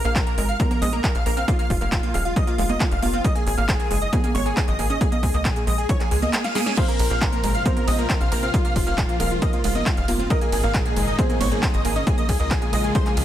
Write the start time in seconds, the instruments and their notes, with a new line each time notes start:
0.04 analog synth bass A#1, synth pluck A#3, supersaw synth F5, digital synth lead F6, closed hi-hat
0.15 synth pluck A#2, supersaw synth A#4, digital synth lead A#5, kick, clap, closed hi-hat
0.26 synth pluck A#3, supersaw synth A#4, digital synth lead A#5, closed hi-hat
0.37 analog synth bass G#1, synth pluck G#3, supersaw synth A#4, digital synth lead A#5, open hi-hat
0.49 supersaw synth F5, digital synth lead F6, closed hi-hat
0.60 synth pluck F3, supersaw synth A#4, digital synth lead A#5, kick, closed hi-hat, high conga
0.71 synth pluck A#3, supersaw synth A#4, digital synth lead A#5, closed hi-hat, high conga
0.82 analog synth bass A#1, synth pluck G#3, supersaw synth D#5, digital synth lead D#6, open hi-hat, high conga
0.93 synth pluck A#3, supersaw synth A#4, digital synth lead A#5, closed hi-hat
1.04 synth pluck A#3, supersaw synth A#4, digital synth lead A#5, kick, clap, closed hi-hat
1.15 analog synth bass A#1, supersaw synth F5, digital synth lead F6, closed hi-hat
1.26 analog synth bass A#1, synth pluck A#3, supersaw synth A#4, digital synth lead A#5, open hi-hat
1.37 synth pluck C4, supersaw synth F5, digital synth lead F6, closed hi-hat
1.48 synth pluck A#3, supersaw synth F4, digital synth lead F5, kick, closed hi-hat
1.59 synth pluck A#3, supersaw synth F5, digital synth lead F6, closed hi-hat
1.70 analog synth bass F1, supersaw synth F4, digital synth lead F5, kick, open hi-hat
1.81 analog synth bass F1, synth pluck A#3, supersaw synth F5, digital synth lead F6, closed hi-hat
1.92 synth pluck A#2, supersaw synth F4, digital synth lead F5, kick, clap, closed hi-hat
2.03 synth pluck A#3, supersaw synth F4, digital synth lead F5, closed hi-hat
2.14 analog synth bass D#1, synth pluck G#3, supersaw synth F5, digital synth lead F6, open hi-hat
2.25 supersaw synth F4, digital synth lead F5, closed hi-hat
2.36 synth pluck F3, supersaw synth D#5, digital synth lead D#6, kick, closed hi-hat
2.47 synth pluck A#3, supersaw synth F4, digital synth lead F5, closed hi-hat
2.58 analog synth bass F1, synth pluck G#3, supersaw synth F4, digital synth lead F5, open hi-hat
2.69 synth pluck A#3, supersaw synth D#5, digital synth lead D#6, closed hi-hat, high conga
2.80 synth pluck A#3, supersaw synth F4, digital synth lead F5, kick, clap, closed hi-hat
2.91 analog synth bass F1, supersaw synth F5, digital synth lead F6, closed hi-hat
3.02 analog synth bass F1, synth pluck A#3, supersaw synth F4, digital synth lead F5, open hi-hat, high conga
3.13 synth pluck C4, supersaw synth F4, digital synth lead F5, closed hi-hat
3.24 synth pluck A#3, supersaw synth D#5, digital synth lead D#6, kick, closed hi-hat
3.35 synth pluck A#3, supersaw synth G#4, digital synth lead G#5, closed hi-hat
3.46 analog synth bass G#1, supersaw synth G#4, digital synth lead G#5, open hi-hat
3.58 analog synth bass G#1, synth pluck A#3, supersaw synth F5, digital synth lead F6, closed hi-hat
3.69 synth pluck A#2, supersaw synth G#4, digital synth lead G#5, kick, clap, closed hi-hat
3.80 synth pluck A#3, supersaw synth G#4, digital synth lead G#5, closed hi-hat
3.91 analog synth bass F#1, synth pluck G#3, supersaw synth G#4, digital synth lead G#5, open hi-hat
4.01 supersaw synth D#5, digital synth lead D#6, closed hi-hat
4.13 synth pluck F3, supersaw synth G#4, digital synth lead G#5, kick, closed hi-hat, high conga
4.24 synth pluck A#3, supersaw synth G#4, digital synth lead G#5, closed hi-hat, high conga
4.35 analog synth bass G#1, synth pluck G#3, supersaw synth C#5, digital synth lead C#6, open hi-hat, high conga
4.46 synth pluck A#3, supersaw synth G#4, digital synth lead G#5, closed hi-hat
4.57 synth pluck A#3, supersaw synth G#4, digital synth lead G#5, kick, clap, closed hi-hat
4.68 analog synth bass G#1, supersaw synth D#5, digital synth lead D#6, closed hi-hat
4.79 analog synth bass G#1, synth pluck A#3, supersaw synth G#4, digital synth lead G#5, open hi-hat
4.90 synth pluck C#4, supersaw synth D#5, digital synth lead D#6, closed hi-hat
5.01 synth pluck A#3, supersaw synth G#4, digital synth lead G#5, kick, closed hi-hat
5.12 synth pluck A#3, supersaw synth D#5, digital synth lead D#6, closed hi-hat, high conga
5.23 analog synth bass C#2, supersaw synth G#4, digital synth lead G#5, kick, open hi-hat
5.34 analog synth bass C#2, synth pluck A#3, supersaw synth D#5, digital synth lead D#6, closed hi-hat
5.45 synth pluck A#2, supersaw synth G#4, digital synth lead G#5, kick, clap, closed hi-hat
5.56 synth pluck A#3, supersaw synth G#4, digital synth lead G#5, closed hi-hat
5.67 analog synth bass A#1, synth pluck G#3, supersaw synth D#5, digital synth lead D#6, open hi-hat
5.78 supersaw synth G#4, digital synth lead G#5, closed hi-hat
5.89 synth pluck F3, supersaw synth C#5, digital synth lead C#6, kick, closed hi-hat, reverse cymbal
6.00 synth pluck A#3, supersaw synth G#4, digital synth lead G#5, clap, closed hi-hat
6.11 analog synth bass C#2, synth pluck G#3, supersaw synth G#4, digital synth lead G#5, open hi-hat
6.22 synth pluck A#3, supersaw synth D#5, digital synth lead D#6, closed hi-hat, high conga
6.33 synth pluck A#3, supersaw synth G#4, digital synth lead G#5, snare, clap, closed hi-hat
6.44 supersaw synth F5, digital synth lead F6, snare, closed hi-hat
6.55 synth pluck A#3, supersaw synth G#4, digital synth lead G#5, snare, open hi-hat, high conga
6.66 synth pluck C#4, supersaw synth G#4, digital synth lead G#5, snare, closed hi-hat
6.77 string section A#2 C3 F3 C4 F4, synth pluck A#3, grand piano C4 C5, supersaw synth F5, digital synth lead F6, kick, closed hi-hat, crash
6.88 synth pluck A#3, supersaw synth A#4, digital synth lead A#5, closed hi-hat
6.99 analog synth bass A#1, supersaw synth A#4, digital synth lead A#5, open hi-hat, ride
7.10 analog synth bass A#1, synth pluck A#3, supersaw synth F5, digital synth lead F6, closed hi-hat
7.21 synth pluck A#2, supersaw synth A#4, digital synth lead A#5, kick, clap, closed hi-hat
7.32 synth pluck A#3, supersaw synth A#4, digital synth lead A#5, closed hi-hat
7.43 analog synth bass G#1, synth pluck G#3, supersaw synth A#4, digital synth lead A#5, open hi-hat, ride
7.54 supersaw synth F5, digital synth lead F6, closed hi-hat
7.65 synth pluck F3, grand piano C4 C5, supersaw synth A#4, digital synth lead A#5, kick, closed hi-hat, high conga
7.76 synth pluck A#3, supersaw synth A#4, digital synth lead A#5, closed hi-hat, high conga
7.87 analog synth bass A#1, synth pluck G#3, supersaw synth D#5, digital synth lead D#6, open hi-hat, ride, high conga
7.99 synth pluck A#3, supersaw synth A#4, digital synth lead A#5, closed hi-hat
8.10 synth pluck A#3, supersaw synth A#4, kick, clap, closed hi-hat
8.20 analog synth bass A#1, supersaw synth F5, digital synth lead F6, closed hi-hat
8.32 analog synth bass A#1, synth pluck A#3, supersaw synth A#4, digital synth lead A#5, open hi-hat, ride
8.43 synth pluck C4, supersaw synth F5, digital synth lead F6, closed hi-hat
8.54 string section G#2 F3, synth pluck A#3, supersaw synth F4, digital synth lead F5, kick, closed hi-hat
8.65 synth pluck A#3, supersaw synth F5, digital synth lead F6, closed hi-hat
8.76 analog synth bass F1, supersaw synth F4, digital synth lead F5, kick, open hi-hat, ride
8.87 analog synth bass F1, synth pluck A#3, supersaw synth F5, digital synth lead F6, closed hi-hat
8.98 synth pluck A#2, supersaw synth F4, digital synth lead F5, kick, clap, closed hi-hat
9.09 synth pluck A#3, supersaw synth F4, digital synth lead F5, closed hi-hat
9.20 analog synth bass D#1, synth pluck G#3, grand piano A#3 A#4, supersaw synth F5, digital synth lead F6, open hi-hat, ride
9.31 supersaw synth F4, digital synth lead F5, closed hi-hat
9.42 synth pluck F3, supersaw synth D#5, digital synth lead D#6, kick, closed hi-hat
9.53 synth pluck A#3, supersaw synth F4, digital synth lead F5, closed hi-hat
9.64 analog synth bass F1, synth pluck G#3, supersaw synth F4, digital synth lead F5, open hi-hat, ride
9.75 synth pluck A#3, supersaw synth D#5, digital synth lead D#6, closed hi-hat, high conga
9.86 supersaw synth F4, digital synth lead F5, kick, clap, closed hi-hat
9.97 analog synth bass F1, supersaw synth F5, digital synth lead F6, closed hi-hat
10.08 analog synth bass F1, synth pluck A#3, supersaw synth F4, digital synth lead F5, open hi-hat, ride, high conga
10.19 synth pluck C4, supersaw synth F4, digital synth lead F5, closed hi-hat
10.30 string section A#2 D#3 A#3 D#4, synth pluck A#3, grand piano A#3 A#4, supersaw synth D#5, digital synth lead D#6, kick, closed hi-hat
10.41 synth pluck A#3, supersaw synth G#4, digital synth lead G#5, closed hi-hat
10.52 analog synth bass G#1, supersaw synth G#4, digital synth lead G#5, open hi-hat, ride
10.63 analog synth bass G#1, synth pluck A#3, supersaw synth F5, digital synth lead F6, closed hi-hat
10.74 synth pluck A#2, supersaw synth G#4, digital synth lead G#5, kick, clap, closed hi-hat
10.85 synth pluck A#3, supersaw synth G#4, digital synth lead G#5, closed hi-hat
10.96 analog synth bass F#1, synth pluck G#3, supersaw synth G#4, digital synth lead G#5, open hi-hat, ride
11.07 supersaw synth D#5, digital synth lead D#6, closed hi-hat
11.18 synth pluck F3, grand piano C4 C5, supersaw synth G#4, digital synth lead G#5, kick, closed hi-hat, high conga
11.29 synth pluck A#3, supersaw synth G#4, digital synth lead G#5, closed hi-hat, high conga
11.40 analog synth bass G#1, synth pluck G#3, supersaw synth C#5, digital synth lead C#6, open hi-hat, ride, high conga
11.51 synth pluck A#3, supersaw synth G#4, digital synth lead G#5, closed hi-hat
11.63 synth pluck A#3, supersaw synth G#4, digital synth lead G#5, kick, clap, closed hi-hat
11.74 analog synth bass G#1, supersaw synth D#5, digital synth lead D#6, closed hi-hat
11.85 analog synth bass G#1, synth pluck A#3, supersaw synth G#4, digital synth lead G#5, open hi-hat, ride
11.96 synth pluck C#4, supersaw synth D#5, digital synth lead D#6, closed hi-hat
12.07 string section C#3 F3 G#3 F4, synth pluck A#3, supersaw synth G#4, digital synth lead G#5, kick, closed hi-hat
12.18 synth pluck A#3, supersaw synth D#5, digital synth lead D#6, closed hi-hat
12.29 analog synth bass C#2, supersaw synth G#4, digital synth lead G#5, kick, open hi-hat, ride
12.40 analog synth bass C#2, synth pluck A#3, supersaw synth D#5, digital synth lead D#6, closed hi-hat
12.51 synth pluck A#2, supersaw synth G#4, digital synth lead G#5, kick, clap, closed hi-hat
12.62 synth pluck A#3, supersaw synth G#4, digital synth lead G#5, closed hi-hat
12.73 analog synth bass A#1, grand piano G#3 G#4, synth pluck G#3, supersaw synth D#5, digital synth lead D#6, open hi-hat, ride
12.84 supersaw synth G#4, digital synth lead G#5, closed hi-hat
12.95 synth pluck F3, supersaw synth C5, digital synth lead C6, kick, closed hi-hat
13.06 synth pluck A#3, supersaw synth G#4, digital synth lead G#5, clap, closed hi-hat
13.17 analog synth bass C#2, synth pluck F3, supersaw synth G#4, digital synth lead G#5, open hi-hat, ride